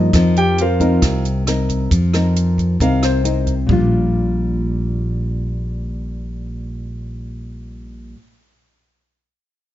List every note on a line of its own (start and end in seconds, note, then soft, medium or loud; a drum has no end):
0.00 0.11 G2 soft
0.00 0.10 F3 medium
0.00 0.10 A#3 medium
0.00 0.10 D#4 medium
0.00 0.34 D#4 soft
0.00 0.34 A#4 soft
0.00 0.34 C5 soft
0.00 0.34 D#5 medium
0.13 0.98 F2 medium
0.13 1.01 F3 medium
0.13 0.58 C4 soft
0.13 0.58 D#4 soft
0.13 0.59 A#4 medium
0.13 kick medium
0.13 cross-stick medium
0.13 closed hi-hat soft
0.36 0.58 G4 medium
0.36 0.58 G5 medium
0.36 closed hi-hat soft
0.58 1.22 F4 soft
0.58 1.23 A#4 medium
0.58 1.22 C5 soft
0.58 1.22 F5 medium
0.58 closed hi-hat soft
0.80 1.43 C4 medium
0.80 1.44 D#4 medium
0.80 1.44 A#4 medium
0.80 kick soft
0.80 closed hi-hat soft
1.02 1.87 C2 medium
1.02 1.90 C3 soft
1.02 kick soft
1.02 cross-stick medium
1.02 closed hi-hat soft
1.25 closed hi-hat soft
1.47 1.91 C4 soft
1.47 1.91 D#4 soft
1.47 1.92 A#4 soft
1.47 cross-stick soft
1.47 closed hi-hat soft
1.69 kick soft
1.69 closed hi-hat soft
1.91 2.76 F2 medium
1.91 2.78 F3 soft
1.91 kick medium
1.91 closed hi-hat soft
2.14 2.77 C4 soft
2.14 2.77 D#4 soft
2.14 2.77 A#4 medium
2.14 cross-stick soft
2.14 closed hi-hat soft
2.36 closed hi-hat soft
2.58 kick soft
2.58 closed hi-hat soft
2.80 3.65 C2 medium
2.80 3.67 C3 soft
2.80 3.21 C4 soft
2.80 3.22 D#4 soft
2.80 3.22 A#4 soft
2.80 3.03 F5 medium
2.80 kick medium
2.80 closed hi-hat soft
3.03 3.55 C5 medium
3.03 cross-stick soft
3.03 closed hi-hat soft
3.24 3.53 C4 soft
3.24 3.53 D#4 soft
3.24 3.53 A#4 soft
3.24 closed hi-hat soft
3.47 kick soft
3.47 closed hi-hat soft
3.67 8.13 A#1 medium
3.67 8.15 A#2 medium
3.67 8.17 G3 medium
3.67 kick medium
3.67 floor tom medium
3.71 8.19 D4 soft
3.71 8.21 F4 medium